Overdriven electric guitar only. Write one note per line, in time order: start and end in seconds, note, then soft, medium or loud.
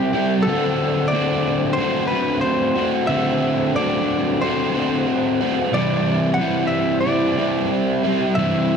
0.00 0.16 G3 medium
0.00 0.15 C4 medium
0.00 0.12 E4 medium
0.14 0.47 G3 medium
0.14 0.48 C4 medium
0.14 0.45 E4 medium
0.46 1.11 D3 loud
0.46 1.13 A3 medium
0.46 1.13 C4 medium
0.46 1.13 F#4 loud
1.11 1.76 D3 medium
1.11 1.78 A3 medium
1.11 1.79 C4 medium
1.11 1.79 F#4 medium
1.78 2.44 D3 loud
1.78 2.12 A3 loud
1.78 2.11 C4 loud
1.78 2.09 F#4 loud
2.10 2.77 A3 medium
2.10 2.77 C4 medium
2.10 2.74 F#4 medium
2.76 3.08 A3 medium
2.76 3.10 C4 medium
2.76 3.10 F#4 medium
3.08 3.74 D3 medium
3.08 3.75 A3 medium
3.08 3.77 C4 loud
3.08 3.77 F#4 loud
3.75 4.40 D3 medium
3.75 4.41 A3 medium
3.75 4.43 C4 medium
3.75 4.43 F#4 medium
4.42 5.07 D3 medium
4.42 4.76 A3 loud
4.42 4.75 C4 loud
4.42 4.73 F#4 loud
4.75 5.42 A3 medium
4.75 5.42 C4 medium
4.75 5.39 F#4 medium
5.41 5.72 A3 medium
5.41 5.73 C4 medium
5.41 5.71 F#4 medium
5.72 7.04 C3 medium
5.72 6.38 E3 medium
5.72 6.40 G3 medium
5.72 6.40 C4 medium
5.72 6.41 E4 loud
6.38 7.04 E3 medium
6.38 7.06 G3 medium
6.38 7.07 C4 medium
6.38 7.06 E4 loud
7.05 7.70 C3 medium
7.05 7.70 E3 medium
7.05 7.40 G3 loud
7.05 7.39 C4 loud
7.05 7.37 E4 loud
7.38 8.06 G3 medium
7.38 8.05 C4 medium
7.38 8.03 E4 medium
8.04 8.37 G3 medium
8.04 8.38 C4 medium
8.04 8.38 E4 medium
8.36 8.77 C3 medium
8.36 8.77 E3 medium
8.36 8.77 G3 medium
8.36 8.77 C4 medium
8.36 8.77 E4 medium